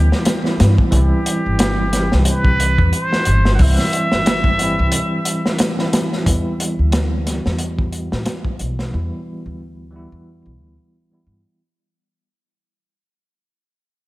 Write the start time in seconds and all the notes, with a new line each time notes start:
Already playing: D2 E3 G3 B3 E4 G4
0.12 snare
0.25 snare, closed hi-hat
0.44 E3 G3 B3 E4, snare
0.60 G2, snare, closed hi-hat
0.78 kick
0.91 C2 E3 G3 C4, kick, closed hi-hat
0.96 E4 G4
1.26 closed hi-hat
1.46 G1
1.59 snare, closed hi-hat
1.91 E3 G3 C4, snare, closed hi-hat
1.97 G4
2.12 C2, snare
2.25 closed hi-hat
2.29 B4
2.45 kick
2.60 closed hi-hat
2.78 E2, kick
2.93 C5, closed hi-hat
3.13 snare
3.25 G1, closed hi-hat
3.45 snare
3.55 E3 F#5
3.59 C2 G3 C4 E4 E5, kick, open hi-hat
3.79 snare
3.93 closed hi-hat
4.12 G1, snare
4.26 snare, closed hi-hat
4.44 kick
4.57 E3 G3 C4, closed hi-hat
4.63 E4
4.79 C2
4.92 closed hi-hat
5.25 closed hi-hat
5.46 snare
5.59 snare, closed hi-hat
5.77 E3 G3 C4 E4, snare
5.93 snare, closed hi-hat
6.13 snare
6.24 E2 E3 G3 B3, kick, closed hi-hat
6.29 E4
6.60 closed hi-hat
6.79 D2
6.92 snare, closed hi-hat
7.24 E3 G3 B3, snare, closed hi-hat
7.30 F#4
7.46 E2, snare
7.59 closed hi-hat
7.79 kick
7.93 closed hi-hat
8.12 A2, snare
8.26 snare, closed hi-hat
8.45 kick
8.59 B1, closed hi-hat
8.79 snare
8.92 E2 E3 G3 B3 E4
9.46 D2
9.91 E3 G3 B3
9.96 E4
10.12 E2
10.46 B1
10.60 D2
11.11 E3 G3 B3 E4
11.27 G2